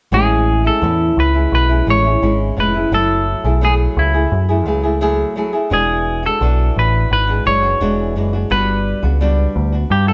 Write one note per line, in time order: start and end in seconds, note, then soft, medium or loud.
0.12 0.68 A1 medium
0.12 0.65 A2 medium
0.12 0.65 G#3 medium
0.12 0.64 C#4 medium
0.12 0.63 E4 medium
0.12 0.67 G#4 medium
0.64 0.83 G#3 soft
0.64 0.81 C#4 soft
0.64 0.82 E4 soft
0.64 1.19 A4 medium
0.81 1.10 E2 medium
0.81 1.34 A2 medium
0.81 1.34 C#4 medium
0.81 1.32 E4 medium
1.17 1.45 C#2 medium
1.17 1.54 B4 medium
1.34 1.70 G#3 soft
1.34 1.69 C#4 soft
1.34 1.68 E4 medium
1.52 1.80 B1 medium
1.52 1.86 B4 medium
1.69 1.86 G#3 soft
1.69 1.87 C#4 soft
1.69 1.87 E4 medium
1.86 2.15 A1 medium
1.86 2.04 A2 medium
1.86 2.05 G#3 medium
1.86 2.04 C#4 medium
1.86 2.03 E4 medium
1.86 2.60 C#5 loud
2.04 2.21 G#3 soft
2.04 2.22 C#4 soft
2.04 2.22 E4 soft
2.22 2.50 G#1 medium
2.22 2.56 G#3 medium
2.22 2.57 C#4 medium
2.22 2.58 E4 medium
2.57 2.85 F1 medium
2.57 2.74 A2 medium
2.57 2.75 G#3 medium
2.57 2.74 C#4 medium
2.57 2.73 E4 medium
2.57 2.94 B4 medium
2.74 2.92 G#3 soft
2.74 2.92 C#4 soft
2.74 2.92 E4 medium
2.92 3.34 F#1 loud
2.92 3.44 F#3 medium
2.92 3.45 A3 medium
2.92 3.44 E4 medium
2.92 3.64 A4 medium
3.44 3.86 B1 medium
3.44 3.61 A3 soft
3.44 3.62 E4 medium
3.44 3.62 G#4 medium
3.61 4.14 F#3 medium
3.61 4.14 A3 medium
3.61 4.14 E4 medium
3.61 4.13 G#4 medium
3.61 3.74 G#4 medium
3.97 4.25 C#2 medium
3.97 5.34 E4 medium
4.14 4.50 A3 soft
4.14 4.49 E4 soft
4.14 4.48 G#4 soft
4.32 4.67 F#2 medium
4.49 4.65 A3 soft
4.49 4.66 E4 soft
4.49 4.66 G#4 medium
4.66 5.23 C#2 medium
4.66 4.84 F#3 medium
4.66 4.84 A3 medium
4.66 4.83 E4 medium
4.66 4.82 G#4 medium
4.83 5.00 A3 soft
4.83 5.01 E4 soft
4.83 5.01 G#4 medium
5.01 5.35 F#3 medium
5.01 5.36 A3 medium
5.01 5.36 E4 medium
5.01 5.37 G#4 loud
5.36 5.54 F#3 medium
5.36 5.54 A3 medium
5.36 5.53 E4 medium
5.36 5.52 G#4 medium
5.53 5.71 A3 soft
5.53 5.71 E4 soft
5.53 5.71 G#4 medium
5.70 6.27 E1 loud
5.70 6.23 E3 medium
5.70 6.24 G#3 medium
5.70 6.23 D4 medium
5.70 6.22 F#4 medium
5.70 6.26 G#4 medium
6.23 6.42 G#3 soft
6.23 6.41 D4 soft
6.23 6.41 F#4 medium
6.23 6.79 A4 medium
6.41 6.69 B1 medium
6.41 7.28 E3 medium
6.41 7.28 D4 medium
6.41 7.27 F#4 medium
6.76 7.04 A1 medium
6.76 7.12 B4 medium
7.11 7.39 G#1 medium
7.11 7.46 B4 loud
7.27 7.45 G#3 soft
7.27 7.46 D4 soft
7.27 7.45 F#4 soft
7.45 7.74 F#1 medium
7.45 7.63 E3 medium
7.45 7.63 G#3 medium
7.45 7.62 D4 medium
7.45 7.61 F#4 medium
7.45 8.47 C#5 loud
7.62 7.80 G#3 soft
7.62 7.80 D4 soft
7.62 7.80 F#4 soft
7.80 8.16 E1 medium
7.80 8.14 E3 medium
7.80 8.15 G#3 medium
7.80 8.16 D4 medium
7.80 8.17 F#4 medium
8.16 8.44 F#1 medium
8.16 8.33 E3 medium
8.16 8.34 G#3 medium
8.16 8.33 D4 medium
8.16 8.32 F#4 medium
8.33 8.50 G#3 soft
8.33 8.50 D4 soft
8.33 8.50 F#4 soft
8.50 8.93 G1 medium
8.50 9.03 G3 medium
8.50 9.03 B3 medium
8.50 9.03 D4 medium
8.50 9.01 F#4 medium
8.50 9.87 B4 loud
9.03 9.45 C#2 medium
9.03 9.20 B3 soft
9.03 9.21 D4 soft
9.03 9.20 F#4 medium
9.21 9.73 G3 medium
9.21 9.73 B3 medium
9.21 9.73 D4 medium
9.21 9.71 F#4 medium
9.56 9.84 D2 medium
9.73 10.09 B3 soft
9.73 10.08 D4 soft
9.73 10.07 F#4 soft
9.90 10.13 G2 medium
9.90 10.07 G4 medium
10.08 10.13 B3 soft
10.08 10.13 D4 soft
10.08 10.13 F#4 medium
10.08 10.13 A4 medium